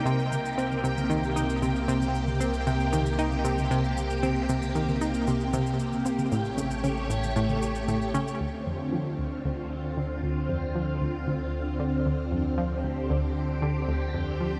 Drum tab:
SH |xxxxxxxxxxxxxxxx|xxxxxxxxxxxxxxxx|xxxxxxxxxxxxxxxx|xxxxxxxxxxxxxxxx|
T1 |o-o--o-o--o-o--o|-o--o-o--o-o--o-|o--o-o--o-o--o-o|--o-o--o-o--o-o-|

SH |----------------|----------------|----------------|
T1 |----------------|----------------|----------------|